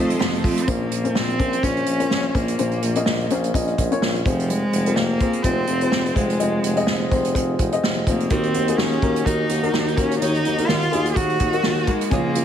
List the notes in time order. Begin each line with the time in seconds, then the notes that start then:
Already playing: F2 D#3 A3 C4 D#4 F4 A4 D#5 F5 C6
0.10 closed hi-hat
0.19 F2 C3 D#3 A3 C4 F4, snare
0.34 closed hi-hat
0.43 F2 D#3 A3 C4 F4, kick, open hi-hat
0.57 closed hi-hat
0.63 C4
0.67 A#1 A#2 A#3 C#4 F4 A#4 C5, kick, closed hi-hat
0.91 A#1, closed hi-hat
1.04 C#4 F4 A#4 C5, closed hi-hat
1.14 A#1 C4, snare
1.29 closed hi-hat
1.38 A#1 C#4 F4 A#4 C5, kick, closed hi-hat
1.53 closed hi-hat
1.62 A#1 C#4 F4 A#4 C5, kick, snare, closed hi-hat
1.77 closed hi-hat
1.86 A#1, closed hi-hat
2.00 C#4 F4 A#4 C5, closed hi-hat
2.10 A#1, snare
2.34 A#1 A#3 C#4 F4 A#4 C5, kick, closed hi-hat
2.48 closed hi-hat
2.58 A#1 A#2 C#4 F4 A#4 C5, closed hi-hat
2.71 closed hi-hat
2.82 A#1, closed hi-hat
2.95 C#4 F4 A#4 D#5, closed hi-hat
3.06 A#1, snare
3.19 closed hi-hat
3.30 A#1 C#4 F4 A#4 C5, closed hi-hat
3.44 closed hi-hat
3.54 A#1 C#4 F4 A#4 D#5, kick, closed hi-hat
3.67 closed hi-hat
3.78 A#1, kick, closed hi-hat
3.91 C#4 F4 A#4 C#5, closed hi-hat
4.01 A#1, snare
4.16 closed hi-hat
4.25 F1 F3 C4 F4 G#4 C5, kick, closed hi-hat
4.40 closed hi-hat
4.50 G#3, closed hi-hat
4.72 F1, closed hi-hat
4.86 C4 F4 G#4 A#4, closed hi-hat
4.96 F1 A#3, snare
5.20 C4 F4 G#4 C5, kick, closed hi-hat
5.33 closed hi-hat
5.43 F1 C4 F4 G#4 C5, kick, closed hi-hat
5.67 F1, closed hi-hat
5.81 C4 F4 G#4 C5, closed hi-hat
5.92 F1, snare
6.06 closed hi-hat
6.14 F1 G#3 C4 F4 G#4 C5, kick, closed hi-hat
6.30 closed hi-hat
6.39 F1 C4 F4 G#4 D#5, closed hi-hat
6.64 F1, closed hi-hat
6.76 C4 F4 G#4 D#5, closed hi-hat
6.87 F1, snare
7.11 F1 C4 F4 G#4 C5, kick, closed hi-hat
7.25 closed hi-hat
7.33 F1 C4 F4 G#4 C5, kick, closed hi-hat
7.59 F1, kick, closed hi-hat
7.72 C4 F4 G#4 D#5, closed hi-hat
7.83 F1, snare
8.06 F1 A#3 C4 F4 G#4 C5, kick, closed hi-hat
8.20 closed hi-hat
8.30 D#2 D#3 A#3 C4 D#4 F#4 A#4, kick, closed hi-hat
8.43 closed hi-hat
8.53 D#2 A#3 D#4 F#4, closed hi-hat
8.68 A#3 D#4 F#4 G#4, closed hi-hat
8.77 D#2 D#3 A#3 C#4 D#4 F#4, snare
8.92 closed hi-hat
9.02 D#2 A#3 D#4 F#4 A#4, kick, closed hi-hat
9.16 closed hi-hat
9.25 D#2 D#3 A#3 D#4 F#4 A#4, kick, closed hi-hat
9.49 D#2 A#3 D#4 F#4, closed hi-hat
9.63 A#3 D#4 F#4 A#4, closed hi-hat
9.73 D#2 D#3 A#3 D#4 F#4, snare
9.88 closed hi-hat
9.97 D#2 A#3 C#4 D#4 F#4 A#4, kick, closed hi-hat
10.11 closed hi-hat
10.20 D#2 D#3 A#3 D#4 F#4 C#5, closed hi-hat
10.34 closed hi-hat
10.44 D#2 A#3 D#4 F#4, closed hi-hat
10.58 A#3 D#4 F#4 A#4, closed hi-hat
10.68 D#2 D#3 A#3 D#4 F4 F#4, snare
10.82 closed hi-hat
10.92 D#2 A#3 D#4 F#4 G#4, closed hi-hat
11.05 closed hi-hat
11.11 G#4
11.15 D#2 D#3 A#3 D#4 F#4 A#4, kick, closed hi-hat
11.30 closed hi-hat
11.40 D#2 A#3 D#4 F#4, kick, closed hi-hat
11.53 A#3 D#4 F#4 A#4, closed hi-hat
11.63 D#2 D#3 A#3 D#4 F#4, snare
11.77 closed hi-hat
11.86 G#3 A#3 D#4 F#4 A#4, kick, closed hi-hat
11.90 A#3 D#4
12.01 closed hi-hat
12.11 C#2 C#3 F3 G#3 A#3 C#4 F4 G#4, kick, closed hi-hat
12.35 C#2 G#3 C#4 F4, closed hi-hat